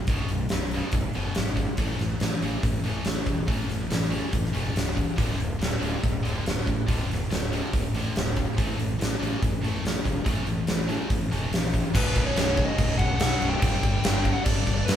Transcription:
0.07 fingered electric bass B0, distorted electric guitar B1 F#2 B2, kick, open hi-hat
0.29 fingered electric bass B0, distorted electric guitar B1 F#2, open hi-hat
0.49 fingered electric bass B0, distorted electric guitar B1 F#2, snare, open hi-hat
0.71 distorted electric guitar B1 F#2 B2, open hi-hat
0.92 fingered electric bass B0, distorted electric guitar B1 F#2, kick, open hi-hat
1.14 fingered electric bass F#1, distorted electric guitar B1 F#2 B2, open hi-hat
1.35 fingered electric bass G#1, distorted electric guitar B1 F#2, snare, open hi-hat
1.56 distorted electric guitar B1 F#2, kick, open hi-hat
1.77 fingered electric bass A1, distorted electric guitar A2 E3 A3, kick, open hi-hat
1.99 fingered electric bass A1, distorted electric guitar A2 E3, snare, open hi-hat
2.20 fingered electric bass A1, distorted electric guitar A2 E3, snare, open hi-hat
2.42 fingered electric bass A1, distorted electric guitar A2 E3 A3, open hi-hat
2.63 fingered electric bass A1, distorted electric guitar A2 E3, kick, open hi-hat
2.84 fingered electric bass A1, distorted electric guitar A2 E3 A3, open hi-hat
3.05 fingered electric bass A1, distorted electric guitar A2 E3, snare, open hi-hat
3.26 fingered electric bass E1, distorted electric guitar A2 E3, kick, open hi-hat
3.47 fingered electric bass A1, distorted electric guitar A2 E3 A3, kick, open hi-hat
3.69 fingered electric bass A1, distorted electric guitar A2 E3, snare, open hi-hat
3.90 fingered electric bass A1, distorted electric guitar A2 E3, snare, open hi-hat
4.11 distorted electric guitar A2 E3 A3, open hi-hat
4.32 fingered electric bass A1, distorted electric guitar A2 E3, kick, open hi-hat
4.46 snare
4.53 fingered electric bass E1, distorted electric guitar A2 E3 A3, open hi-hat
4.75 fingered electric bass C#1, distorted electric guitar A2 E3, snare, open hi-hat
4.95 distorted electric guitar A2 E3, kick, open hi-hat
5.16 fingered electric bass D1, distorted electric guitar D2 A2 D3, kick, open hi-hat
5.39 fingered electric bass D1, distorted electric guitar D2 A2, open hi-hat
5.59 fingered electric bass D1, distorted electric guitar D2 A2, snare, open hi-hat
5.80 fingered electric bass D1, distorted electric guitar D2 A2 D3, open hi-hat
6.01 fingered electric bass D1, distorted electric guitar D2 A2, kick, open hi-hat
6.23 fingered electric bass D1, distorted electric guitar D2 A2 D3, open hi-hat
6.45 fingered electric bass D1, distorted electric guitar D2 A2, snare, open hi-hat
6.66 fingered electric bass A1, distorted electric guitar D2 A2, kick, open hi-hat
6.87 fingered electric bass D1, distorted electric guitar D2 A2 D3, kick, open hi-hat
7.09 fingered electric bass D1, distorted electric guitar D2 A2, snare, open hi-hat
7.30 fingered electric bass D1, distorted electric guitar D2 A2, snare, open hi-hat
7.52 distorted electric guitar D2 A2 D3, open hi-hat
7.73 fingered electric bass D1, distorted electric guitar D2 A2, kick, open hi-hat
7.94 fingered electric bass A1, distorted electric guitar D2 A2 D3, open hi-hat
8.16 fingered electric bass D1, distorted electric guitar D2 A2, snare, open hi-hat
8.36 distorted electric guitar D2 A2, kick, open hi-hat
8.57 fingered electric bass A1, distorted electric guitar A2 E3 A3, kick, open hi-hat
8.78 fingered electric bass A1, distorted electric guitar A2 E3, open hi-hat
8.99 fingered electric bass A1, distorted electric guitar A2 E3, snare, open hi-hat
9.20 fingered electric bass A1, distorted electric guitar A2 E3 A3, open hi-hat
9.41 fingered electric bass A1, distorted electric guitar A2 E3, kick, open hi-hat
9.63 fingered electric bass A1, distorted electric guitar A2 E3 A3, open hi-hat
9.83 fingered electric bass A1, distorted electric guitar A2 E3, snare, open hi-hat
10.04 fingered electric bass E1, distorted electric guitar A2 E3, kick, open hi-hat
10.25 fingered electric bass A1, distorted electric guitar A2 E3 A3, kick, open hi-hat
10.46 fingered electric bass A1, distorted electric guitar A2 E3, open hi-hat
10.67 fingered electric bass A1, distorted electric guitar A2 E3, snare, open hi-hat
10.88 distorted electric guitar A2 E3 A3, open hi-hat
11.09 fingered electric bass A1, distorted electric guitar A2 E3, kick, open hi-hat
11.31 fingered electric bass E1, distorted electric guitar A2 E3 A3, open hi-hat
11.52 fingered electric bass A#1, distorted electric guitar A2 E3, snare, open hi-hat
11.73 distorted electric guitar A2 E3, kick, open hi-hat
11.94 fingered electric bass B0, distorted electric guitar B1 F#2 B2, lead electric guitar B4, kick, crash
12.07 snare
12.16 fingered electric bass B0, kick, crash
12.25 lead electric guitar C#5
12.36 fingered electric bass B0, snare, crash
12.57 kick, crash
12.66 lead electric guitar D#5
12.78 fingered electric bass B0, kick, crash
12.98 fingered electric bass B0, lead electric guitar F#5, kick, crash
13.17 fingered electric bass B1, lead electric guitar F#5, snare, crash
13.41 fingered electric bass B0, distorted electric guitar B1 F#2 B2, crash
13.50 lead electric guitar G5
13.62 fingered electric bass G1, distorted electric guitar G2 D3 G3, kick, crash
13.83 fingered electric bass G1, kick, crash
13.93 lead electric guitar G5
14.04 fingered electric bass G1, snare, crash
14.25 kick, crash
14.33 lead electric guitar F#5
14.44 fingered electric bass G1, lead electric guitar D5, kick, crash
14.67 fingered electric bass G1, kick, crash
14.74 lead electric guitar D5
14.85 fingered electric bass G2, lead electric guitar B4, crash
14.89 snare

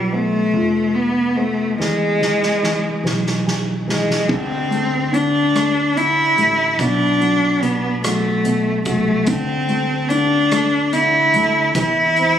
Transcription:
Already playing: upright bass B1, cello G3, felt piano B3 F4
0.13 cello A3, felt piano B3
0.54 upright bass F1, felt piano F4
0.95 cello B3
1.36 cello A3, felt piano B3
1.78 upright bass E2, felt piano E3, cello G#3, snare
2.21 felt piano E3, snare
2.43 snare
2.63 felt piano E3, snare
3.04 upright bass B1, felt piano E3, snare
3.26 snare
3.46 felt piano G#5, snare
3.88 felt piano E3, cello G#3, snare
4.10 snare
4.29 upright bass D2, felt piano D3, cello C4, kick, crash
4.71 felt piano A3, closed hi-hat
5.12 felt piano D3, cello D4, closed hi-hat
5.55 felt piano A3, cross-stick, closed hi-hat
5.96 felt piano D3, cello E4, closed hi-hat
6.37 upright bass A1, felt piano A3, closed hi-hat
6.79 upright bass B1, felt piano B2, cello D4, kick, closed hi-hat
7.21 felt piano F#3, closed hi-hat
7.62 felt piano B2, cello B3, closed hi-hat
8.03 felt piano F#3, cello A3, cross-stick, closed hi-hat
8.45 felt piano B2, closed hi-hat
8.85 upright bass C2, felt piano F#3, cello A3, kick, closed hi-hat
9.26 upright bass D2, felt piano D3, cello C4, kick, closed hi-hat
9.68 felt piano A3, closed hi-hat
10.09 felt piano D3, cello D4, closed hi-hat
10.51 felt piano A3, cross-stick, closed hi-hat
10.93 felt piano D3, cello E4, closed hi-hat
11.34 upright bass D2, felt piano A3, closed hi-hat
11.75 upright bass E2, felt piano E3, cello E4, kick, closed hi-hat
12.16 felt piano C4, closed hi-hat

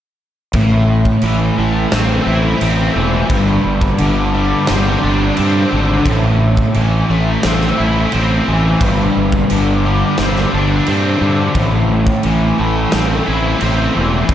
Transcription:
0.53 fingered electric bass A1, overdriven electric guitar A2, kick, crash
1.05 kick
1.22 fingered electric bass A1, overdriven electric guitar E3, crash
1.58 fingered electric bass A1, overdriven electric guitar A3
1.92 fingered electric bass A1, overdriven electric guitar C4, snare, crash
2.27 fingered electric bass A1, overdriven electric guitar E4
2.61 fingered electric bass A1, overdriven electric guitar C4, crash
2.96 fingered electric bass E1, overdriven electric guitar E3
3.30 fingered electric bass G1, overdriven electric guitar G2, kick, crash
3.65 fingered electric bass G1
3.81 kick
3.98 fingered electric bass G1, overdriven electric guitar D3, crash
4.34 overdriven electric guitar G3
4.67 fingered electric bass G1, overdriven electric guitar C4, snare, crash
5.03 fingered electric bass G1, overdriven electric guitar D4
5.37 fingered electric bass G2, overdriven electric guitar C4, crash
5.71 fingered electric bass G#1, overdriven electric guitar D3
6.05 fingered electric bass A1, overdriven electric guitar A2, kick, crash
6.57 kick
6.74 fingered electric bass A1, overdriven electric guitar E3, crash
7.09 fingered electric bass A1, overdriven electric guitar A3
7.43 fingered electric bass A1, overdriven electric guitar C4, snare, crash
7.61 snare
7.77 fingered electric bass A1, overdriven electric guitar E4
8.12 fingered electric bass A1, overdriven electric guitar C4, crash
8.48 fingered electric bass A1, overdriven electric guitar E3
8.81 fingered electric bass G1, overdriven electric guitar G2, kick, crash
9.16 fingered electric bass G1
9.32 kick
9.50 fingered electric bass G1, overdriven electric guitar D3, crash
9.85 overdriven electric guitar G3
10.18 fingered electric bass G1, overdriven electric guitar C4, snare, crash
10.36 snare
10.53 fingered electric bass G1, overdriven electric guitar D4
10.86 fingered electric bass G2, overdriven electric guitar C4, crash
11.21 fingered electric bass G2, overdriven electric guitar D3
11.55 fingered electric bass A1, overdriven electric guitar A2, kick, crash
12.07 kick
12.23 fingered electric bass A1, overdriven electric guitar E3, crash
12.59 fingered electric bass A1, overdriven electric guitar A3
12.92 fingered electric bass A1, overdriven electric guitar C4, snare, crash
13.26 fingered electric bass A1, overdriven electric guitar E4
13.60 fingered electric bass A1, overdriven electric guitar C4, crash
13.95 fingered electric bass E1, overdriven electric guitar E3
14.29 fingered electric bass G1, overdriven electric guitar G2, kick, crash

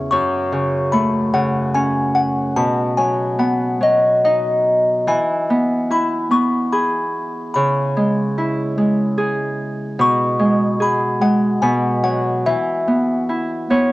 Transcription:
Already playing: harp E2 C#3 C#4
0.11 harp F#2, music box C#6
0.52 harp C#3
0.92 harp A3, music box B5
1.33 harp C#3, music box F#5
1.74 harp C#4, music box G#5
2.15 music box F#5
2.56 harp B2, music box A5
2.97 harp F#3, music box G#5
3.39 harp B3, music box F#5
3.81 harp F#3, music box D#5
4.25 harp D#4, music box D#5
5.07 harp E3, music box G#5
5.50 harp B3
5.91 harp E4, music box B5
6.31 harp B3, music box C#6
6.73 harp G#4, music box B5
7.54 harp C#3, music box B5
7.97 harp G#3
8.38 harp E4
8.78 harp G#3
9.18 harp G#4
9.99 harp B2, music box C#6
10.39 harp G#3
10.80 harp G#4, music box B5
11.21 harp G#3, music box F#5
11.62 harp B2, music box G#5
12.03 harp F#3, music box F#5
12.46 harp E3, music box E5
12.87 harp B3
13.29 harp E4
13.70 harp B3 C#5

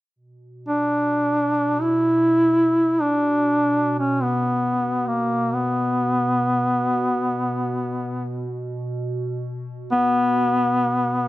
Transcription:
0.16 ambient pad B2
0.68 duduk D4
1.81 duduk E4
3.01 duduk D4
3.99 duduk C#4
4.23 duduk B3
5.07 duduk A#3
5.54 duduk B3
9.92 duduk B3

